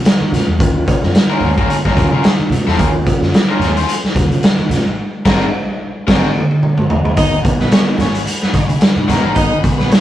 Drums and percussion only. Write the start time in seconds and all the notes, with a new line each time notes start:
0.05 snare, closed hi-hat, muted conga
0.32 snare, closed hi-hat, high conga, low conga
0.59 kick, closed hi-hat, muted conga, low conga
0.87 kick, closed hi-hat, high conga
1.03 snare
1.14 snare, closed hi-hat, muted conga
1.40 open hi-hat, muted conga, low conga
1.58 kick, closed hi-hat
1.68 closed hi-hat, muted conga
1.85 kick, snare
1.95 kick, snare, closed hi-hat, high conga
2.10 high conga
2.23 snare, closed hi-hat, muted conga
2.50 closed hi-hat, muted conga, high conga, low conga
2.68 snare
2.77 kick, closed hi-hat, muted conga, low conga
3.05 kick, closed hi-hat, high conga
3.22 snare
3.32 snare, closed hi-hat, muted conga
3.59 snare, closed hi-hat, muted conga, low conga
3.77 closed hi-hat
3.89 closed hi-hat
4.05 snare
4.15 kick, snare, closed hi-hat, muted conga, high conga
4.30 closed hi-hat, high conga
4.42 snare, closed hi-hat, muted conga
4.69 snare, closed hi-hat, muted conga, high conga, low conga
5.25 kick, snare, crash
6.08 kick, snare, crash
6.36 high tom
6.51 high tom
6.63 mid tom
6.78 mid tom
6.90 floor tom
7.05 floor tom
7.17 kick, closed hi-hat
7.43 kick, closed hi-hat, muted conga, high conga
7.60 snare
7.71 snare, closed hi-hat, muted conga
7.98 snare, closed hi-hat, low conga
8.15 closed hi-hat
8.26 closed hi-hat, muted conga
8.43 snare
8.53 kick, snare, closed hi-hat, high conga
8.69 closed hi-hat, high conga
8.81 snare, closed hi-hat, muted conga
8.96 high conga
9.09 snare, closed hi-hat, high conga, low conga
9.36 kick, closed hi-hat, muted conga
9.63 kick, closed hi-hat, high conga
9.79 snare
9.91 snare, closed hi-hat, muted conga